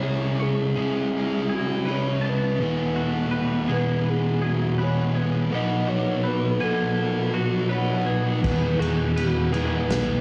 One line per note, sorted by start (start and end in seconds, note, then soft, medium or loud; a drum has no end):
0.00 0.75 C#3 medium
0.00 0.77 E3 medium
0.00 0.77 G#3 medium
0.00 0.75 C#4 medium
0.00 0.75 E4 medium
0.00 0.03 G#4 medium
0.00 0.76 G#4 medium
0.06 0.44 C#5 loud
0.40 1.15 G#4 loud
0.40 0.75 C#5 medium
0.75 1.85 C#3 medium
0.75 1.85 E3 medium
0.75 1.85 G#3 medium
0.75 1.84 C#4 medium
0.75 1.84 E4 loud
0.75 1.48 G#4 medium
1.16 1.56 G#4 loud
1.49 1.85 G#4 medium
1.54 1.92 F#4 medium
1.85 2.58 C#3 medium
1.85 2.58 E3 medium
1.85 2.58 G#3 medium
1.85 2.58 C#4 medium
1.85 2.23 B4 medium
1.89 2.59 E4 medium
1.89 2.30 C#5 loud
2.21 2.59 A5 medium
2.29 3.35 B4 medium
2.59 3.67 E2 medium
2.59 3.67 B2 medium
2.59 3.67 E3 medium
2.59 3.67 G#3 medium
2.59 3.70 B3 medium
2.59 3.68 G#4 medium
2.96 3.68 F#4 medium
3.31 4.78 B4 medium
3.69 4.78 E2 medium
3.69 4.77 B2 medium
3.69 4.77 E3 medium
3.69 4.77 G#3 medium
3.69 4.80 B3 medium
3.69 4.40 G#4 medium
3.69 4.76 G#4 medium
3.69 4.11 B4 medium
4.10 4.45 G#4 medium
4.42 4.85 F#4 medium
4.42 4.78 G#4 medium
4.78 5.49 E2 medium
4.78 5.50 B2 medium
4.78 5.50 E3 medium
4.78 5.50 G#3 medium
4.78 5.52 B3 medium
4.78 5.50 G#4 medium
4.78 6.24 B4 medium
4.83 5.19 C#5 medium
5.15 5.52 G#4 medium
5.15 5.53 B4 medium
5.51 6.59 B2 medium
5.51 6.62 F#3 medium
5.51 6.61 B3 medium
5.51 6.59 D#4 medium
5.51 6.60 F#4 medium
5.51 5.91 D#5 loud
5.87 6.64 F#4 medium
5.87 6.28 C#5 medium
6.24 7.69 B4 medium
6.24 6.65 B4 medium
6.60 7.69 B2 medium
6.60 7.69 F#3 medium
6.60 7.69 B3 medium
6.60 7.68 D#4 medium
6.60 7.68 F#4 medium
6.60 7.35 A4 loud
6.60 7.33 G#5 medium
7.34 7.69 F#4 medium
7.34 7.71 F#4 medium
7.69 8.42 B2 medium
7.69 8.42 F#3 medium
7.69 8.42 B3 medium
7.69 8.43 D#4 medium
7.69 8.43 F#4 medium
7.69 8.06 B4 medium
7.69 8.07 C#5 loud
8.06 8.43 G#4 medium
8.06 8.41 B4 medium
8.42 9.51 E2 medium
8.42 8.77 E2 loud
8.42 9.51 B2 medium
8.42 9.54 E3 medium
8.42 9.54 G#3 medium
8.42 9.52 B3 medium
8.42 9.52 G#4 medium
8.42 8.81 B4 loud
8.42 kick loud
8.42 crash medium
8.79 9.86 E2 medium
8.79 9.16 F#4 medium
8.79 9.18 G#4 medium
8.79 crash medium
9.16 9.54 F#4 medium
9.16 9.52 B4 medium
9.16 crash medium
9.52 10.21 E2 medium
9.52 10.21 B2 medium
9.52 10.21 E3 medium
9.52 10.21 G#3 medium
9.52 10.21 B3 medium
9.52 10.21 G#4 medium
9.52 10.21 B4 loud
9.52 crash medium
9.89 10.21 B1 loud
9.89 snare loud
9.89 crash medium